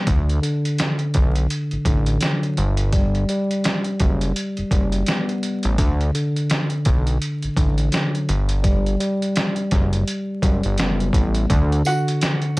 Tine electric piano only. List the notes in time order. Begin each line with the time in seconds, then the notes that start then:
0.07 D3
0.42 D3
1.87 D3
2.20 F#3
2.92 G3
3.29 G3
4.71 G3
5.08 B3
5.78 D3
6.14 D3
7.58 D3
7.92 F#3
8.63 G3
9.00 G3
10.42 G3
10.79 B3
11.49 D3
11.85 D3